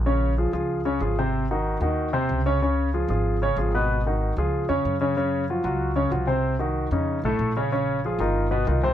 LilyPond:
<<
  \new Staff \with { instrumentName = "Grand piano" } { \time 4/4 \key bes \minor \tempo 4 = 188 <des des' des''>4 <f f' aes'>8 <f f' aes'>4 <des des' des''>8 <f f' aes'>8 <c c' c''>8~ | <c c' c''>8 <ees ees' ges'>4 <ees ees' ges'>4 <c c' c''>4 <des des' des''>8 | <des des' des''>4 <f f' aes'>8 <f f' aes'>4 <des des' des''>8 <f f' aes'>8 <ces ces' ces''>8~ | <ces ces' ces''>8 <ees ees' ges'>4 <f f' aes'>4 <des des' des''>4 <des des' des''>8 |
<des des' des''>4 <f f' ges'>8 <ges f' ges'>4 <des des' des''>8 <f f' ges'>8 <c c' c''>8~ | <c c' c''>8 <ees ees' ges'>4 <des des' ees'>4 <a, a a'>4 <cis cis' cis''>8 | <des des' des''>4 <f f' aes'>8 <ees ees' f'>4 <b, b b'>8 <dis dis' f'>8 <c c' c''>8 | }
  \new Staff \with { instrumentName = "Upright bass" } { \clef bass \time 4/4 \key bes \minor bes,,4. des,4. aes,,4~ | aes,,4. ees,4. des,4~ | des,4. aes,,4. aes,,4~ | aes,,4. des,4 f,8 ges,4~ |
ges,4. des,4. c,4~ | c,4. f,4 ces,8 bes,,4~ | bes,,4. g,,4. c,4 | }
>>